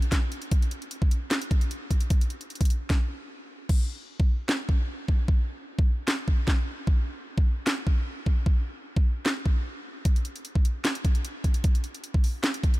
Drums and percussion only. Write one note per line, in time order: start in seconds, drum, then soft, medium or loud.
0.02 closed hi-hat medium
0.12 kick medium
0.12 snare medium
0.12 clap medium
0.12 closed hi-hat medium
0.32 closed hi-hat medium
0.42 closed hi-hat medium
0.51 kick loud
0.51 closed hi-hat medium
0.62 closed hi-hat medium
0.71 closed hi-hat medium
0.82 closed hi-hat medium
0.91 closed hi-hat medium
1.02 kick loud
1.11 closed hi-hat medium
1.31 snare loud
1.31 clap medium
1.31 closed hi-hat medium
1.42 closed hi-hat medium
1.51 kick loud
1.51 closed hi-hat medium
1.61 closed hi-hat soft
1.71 closed hi-hat medium
1.91 kick medium
1.91 closed hi-hat medium
2.00 closed hi-hat medium
2.10 kick loud
2.10 closed hi-hat medium
2.21 closed hi-hat medium
2.30 closed hi-hat medium
2.41 closed hi-hat medium
2.50 closed hi-hat soft
2.55 closed hi-hat medium
2.61 kick loud
2.61 closed hi-hat medium
2.65 closed hi-hat medium
2.70 closed hi-hat medium
2.90 kick loud
2.90 snare medium
3.69 kick loud
3.69 crash loud
4.20 kick loud
4.49 snare loud
4.49 clap medium
4.69 kick medium
5.08 kick medium
5.28 kick loud
5.79 kick loud
6.08 snare loud
6.08 clap medium
6.28 kick loud
6.48 kick medium
6.48 snare medium
6.48 clap medium
6.87 kick loud
7.38 kick loud
7.67 snare loud
7.67 clap medium
7.87 kick loud
8.26 kick medium
8.46 kick loud
8.96 kick loud
9.26 snare loud
9.26 clap medium
9.46 kick medium
10.05 kick loud
10.05 closed hi-hat medium
10.16 closed hi-hat medium
10.25 closed hi-hat medium
10.36 closed hi-hat medium
10.45 closed hi-hat medium
10.55 kick loud
10.65 closed hi-hat medium
10.85 snare loud
10.85 clap medium
10.85 closed hi-hat medium
10.95 closed hi-hat medium
11.05 kick loud
11.05 closed hi-hat medium
11.15 closed hi-hat medium
11.25 closed hi-hat medium
11.44 kick medium
11.44 closed hi-hat medium
11.54 closed hi-hat medium
11.64 kick loud
11.64 closed hi-hat medium
11.75 closed hi-hat medium
11.84 closed hi-hat medium
11.95 closed hi-hat medium
12.04 closed hi-hat medium
12.14 kick loud
12.24 open hi-hat medium
12.44 snare loud
12.44 clap medium
12.44 closed hi-hat medium
12.54 closed hi-hat medium
12.63 kick medium
12.63 closed hi-hat medium
12.74 closed hi-hat medium